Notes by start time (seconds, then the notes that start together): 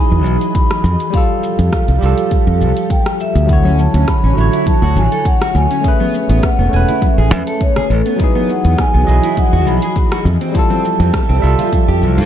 Already playing: E3 F#3 D#4 E4 F#4 G#4 D#5 B5
0.12 E2
0.25 B1, shaker
0.41 closed hi-hat, shaker
0.55 B5, kick, closed hi-hat, shaker
0.71 cross-stick, closed hi-hat
0.84 F2 F3 G4 A4, shaker
1.00 closed hi-hat, shaker
1.10 G3 G4, kick, closed hi-hat
1.14 F4 A4 F5, shaker
1.44 shaker
1.59 F2, closed hi-hat, shaker
1.73 kick, cross-stick, closed hi-hat, shaker
1.88 C2, closed hi-hat
1.98 C2 G3 G4
2.02 F4 A4, shaker
2.18 closed hi-hat, shaker
2.31 kick, closed hi-hat, shaker
2.47 F2
2.61 C2, shaker
2.77 closed hi-hat, shaker
2.90 G5, kick, closed hi-hat, shaker
3.06 cross-stick, closed hi-hat
3.20 E5, shaker
3.35 D2, closed hi-hat, shaker
3.46 D3 F#3 F#4 C#5 F#5, kick, closed hi-hat, shaker
3.51 E4 C#5
3.64 C#4, high conga
3.79 A5, shaker
3.94 D2 C#4, closed hi-hat, shaker
4.08 B5, kick, cross-stick, closed hi-hat, shaker
4.24 A1 C#4
4.33 A1 D3 F#3
4.38 E4 C#5, shaker
4.53 E4, closed hi-hat, shaker
4.66 A5, kick, closed hi-hat, high conga, shaker
4.82 D2 F#4
4.96 A1 G#5, high conga, shaker
5.12 A4, closed hi-hat, shaker
5.25 F#5, kick, closed hi-hat, shaker
5.41 F#4, cross-stick, closed hi-hat
5.54 D2 G#5, low conga, shaker
5.71 C#4, closed hi-hat, shaker
5.81 A3 C#4, kick, closed hi-hat
5.85 G#4 B4 E5, shaker
6.00 B3, high conga
6.14 shaker
6.29 A1 B3, closed hi-hat, shaker
6.43 F#5, kick, cross-stick, closed hi-hat, shaker
6.59 E1 B3
6.69 E1 A3 C#4
6.73 B4 G#5, shaker
6.88 E4, closed hi-hat, low conga, shaker
7.02 E5, kick, closed hi-hat, high conga, shaker
7.18 A1 G#4
7.31 E2, high conga, shaker
7.47 A4, closed hi-hat, shaker
7.61 C#5, kick, closed hi-hat, shaker
7.76 G#4, cross-stick, closed hi-hat, low conga
7.90 A1 A4, shaker
8.06 B3, closed hi-hat, shaker
8.16 E3 F#3 D#4 F#4 G#4 D#5, kick, closed hi-hat, shaker
8.21 E4 G#4 B4
8.35 B3, high conga
8.50 F#5, shaker
8.65 E2 B3, closed hi-hat, shaker
8.78 G#5, kick, cross-stick, closed hi-hat, shaker
8.94 B1 B3
9.04 B1 F#3 D#5, shaker
9.09 E4 G#4
9.23 E4, closed hi-hat, shaker
9.37 F#5, kick, closed hi-hat, high conga, shaker
9.53 E2 F#4
9.67 B1 B5, high conga, shaker
9.82 G#4, closed hi-hat, shaker
9.96 kick, closed hi-hat, shaker
10.12 F#4, cross-stick, closed hi-hat
10.25 F2 F3 G4 A4 E5, low conga, shaker
10.41 C4, closed hi-hat, shaker
10.52 G3 E4, kick, closed hi-hat, shaker
10.56 F4 A4 A5
10.70 C4, high conga
10.85 shaker
11.00 F2 C4, closed hi-hat, shaker
11.14 kick, cross-stick, closed hi-hat, shaker
11.29 C2 C4
11.40 C2 G3 E5
11.44 F4 A4, shaker
11.59 F4, closed hi-hat, low conga, shaker
11.72 kick, closed hi-hat, high conga, shaker
11.88 F2 G4
12.02 C2, high conga, shaker
12.18 A2 F4, closed hi-hat, shaker